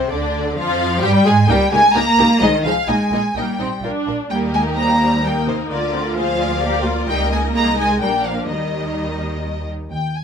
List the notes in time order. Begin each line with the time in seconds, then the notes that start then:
Already playing: C3 C4 C5
0.10 D2 D3 D4 D5
0.56 F2 F3 F4 F5
1.01 G2 G3 G4 G5
1.25 G#2 G#3 G#4 G#5
1.48 C#2 G3 A#3 D#4 G4 A#4 G5
1.71 C#2 G#3 A#3 D#4 G4 A#4 G#5
1.94 C#2 A#3 D#4 G4 A#4 A#5
2.18 C#2 A#3 D#4 G4 A#4
2.41 C2 D#3 G#3 D#4 G#4 C5 D#5
2.65 C2 F3 G#3 D#4 G#4 C5 F5
2.87 A#1 G#3 A#3 D#4 D#5 G#5
3.12 A#1 A#3 D#4 D#5
3.34 A#1 G3 A#3 D#4 D#5 G5
3.58 A#1 C4 D#4 D#5
3.82 A#1 D4 F4 A#4
4.06 A#1 F4 A#4
4.29 D#2 G3 A#3 D#4 G4 A#4 G5
4.54 G#3 G#5
4.77 G3 A#3 C5 A#5
5.00 G3
5.23 G3 A#3 D#4 A#4 G5
5.46 C3 C5
5.69 D2 D3 A#3 F4 A#4 D5
5.93 C4
6.16 F3 A#3 G#4 C5 F5
6.39 D5
6.62 G4 A#4
6.85 F4
7.08 C#2 G3 A#3 D#4 A#4 D#5 G5
7.31 G#3 G#5
7.53 C2 G#3 A#3 D#4 D#5 A#5
7.77 G#3 G#5
8.00 A#1 G3 A#3 D4 A#4 G5
8.25 F3 F5
8.48 D#2 D#3 G3 D#4 A#4 D#5
9.91 D#2 G5
10.17 G#5